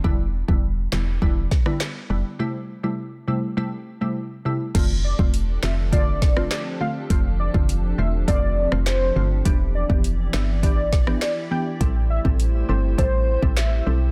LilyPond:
<<
  \new Staff \with { instrumentName = "Soft synth lead" } { \time 4/4 \key f \lydian \tempo 4 = 102 r1 | r1 | r8 d''16 r8. e''16 r16 d''8. r16 d''16 r16 f''16 r16 | r8 d''16 r8. e''16 r16 d''8. r16 c''8. r16 |
r8 d''16 r8. e''16 r16 d''8. r16 d''16 r16 g''16 r16 | r8 e''16 r8. c''16 r16 c''8. r16 e''8. r16 | }
  \new Staff \with { instrumentName = "Ambient pad" } { \time 4/4 \key f \lydian << { r1 | r1 | <f g' a'>1~ | <f g' a'>1 |
<e d''>1 | <a c''>1 | } \\ { r1 | r1 | <c' d'>1~ | <c' d'>1 |
<e' g'>1~ | <e' g'>1 | } >> }
  \new Staff \with { instrumentName = "Synth pluck" } { \time 4/4 \key f \lydian <d g b e'>16 r8 <d g b e'>16 r8 <d g b e'>16 r16 <d g b e'>16 r8 <d g b e'>16 r8 <d g b e'>16 r16 | <c g a e'>16 r8 <c g a e'>16 r8 <c g a e'>16 r16 <c g a e'>16 r8 <c g a e'>16 r8 <c g a e'>16 r16 | <d a c' f'>16 r8 <d a c' f'>16 r8 <d a c' f'>16 r16 <d a c' f'>16 r8 <d a c' f'>16 r8 <d a c' f'>16 r16 | <d a c' f'>16 r8 <d a c' f'>16 r8 <d a c' f'>16 r16 <d a c' f'>16 r8 <d a c' f'>16 r8 <d a c' f'>16 r16 |
<e b d' g'>16 r8 <e b d' g'>16 r8 <e b d' g'>16 r16 <e b d' g'>16 r8 <e b d' g'>16 r8 <e b d' g'>16 r16 | <g c' e' a'>16 r8 <g c' e' a'>16 r8 <g c' e' a'>16 r16 <g c' e' a'>16 r8 <g c' e' a'>16 r8 <g c' e' a'>16 r16 | }
  \new Staff \with { instrumentName = "FM bass" } { \clef bass \time 4/4 \key f \lydian e,,8. e,,8. e,,8 e,,8 r4 f,,16 r16 | r1 | f,,8. e,,8. f,,4. r4 | f,,8. f,,8. e,,8 f,,8. f,,8. g,,8 |
e,,8. f,,8. g,,4. r4 | a,,8. a,,8. g,,8 a,,8. a,,8. b,,8 | }
  \new DrumStaff \with { instrumentName = "Drums" } \drummode { \time 4/4 bd8. bd16 r8 <hc sn>8 bd8 <bd sn>16 ss16 <hc sn>4 | r4 r4 r4 r4 | <cymc hh bd>8. bd16 hh8 <hc sn>8 <hh bd>8 <bd sn>16 ss16 <hc hh sn>4 | <hh bd>8. bd16 hh4 <hh bd>8. ss16 <hc hh sn>4 |
<hh bd>8. bd16 hh8 <hc sn>8 <hh bd>8 <bd sn>16 ss16 <hc hh sn>4 | <hh bd>8. bd16 hh4 <hh bd>8. bd16 <hc hh sn>4 | }
>>